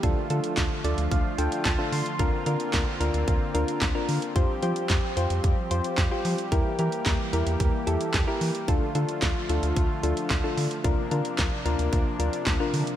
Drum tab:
HH |x-xxx-xxx-xxx-ox|x-xxx-xxx-xxx-ox|x-xxx-xxx-xxx-ox|x-xxx-xxx-xxx-ox|
CP |----x-------x---|----x-------x---|----x-------x---|----x-------x---|
SD |----o-------o---|----o-------o---|----o-------o---|----o-------o---|
BD |o---o---o---o---|o---o---o---o---|o---o---o---o---|o---o---o---o---|

HH |x-xxx-xxx-xxx-ox|x-xxx-xxx-xxx-ox|
CP |----x-------x---|----x-------x---|
SD |----o-------o---|----o-------o---|
BD |o---o---o---o---|o---o---o---o---|